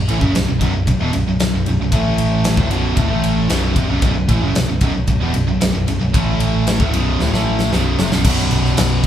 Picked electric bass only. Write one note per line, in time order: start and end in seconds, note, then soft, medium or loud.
0.10 0.20 A1 loud
0.21 0.33 F#1 medium
0.36 0.47 B0 medium
0.49 0.61 B0 medium
0.61 0.73 B0 loud
0.75 0.87 B0 medium
0.88 1.00 B0 medium
1.01 1.13 E1 medium
1.14 1.26 B0 medium
1.27 1.39 B0 medium
1.41 1.53 B0 medium
1.54 1.65 B0 medium
1.67 1.79 B0 medium
1.80 1.92 B0 medium
1.92 2.54 A1 medium
2.58 2.70 D1 loud
2.70 2.95 B0 loud
2.97 3.08 D1 loud
3.09 3.47 A1 loud
3.49 3.74 B0 medium
3.76 3.87 F1 medium
3.88 4.01 B0 loud
4.02 4.15 B0 medium
4.15 4.28 B0 medium
4.29 4.41 A1 loud
4.42 4.54 F#1 loud
4.55 4.68 B0 medium
4.69 4.81 B0 medium
4.81 4.94 B0 loud
4.95 5.07 B0 medium
5.08 5.20 B0 medium
5.21 5.34 E1 loud
5.35 5.47 B0 medium
5.47 5.60 B0 medium
5.61 5.74 B0 medium
5.74 5.87 B0 medium
5.88 6.00 B0 medium
6.02 6.14 B0 medium
6.15 6.76 A1 loud
6.80 6.92 D1 loud
6.94 7.18 B0 loud
7.20 7.31 D1 loud
7.32 7.69 A1 loud
7.72 7.97 B0 medium
7.99 8.11 F1 loud
8.13 8.24 B0 loud
8.25 8.45 B0 loud
8.52 8.72 B0 loud
8.78 8.99 B0 medium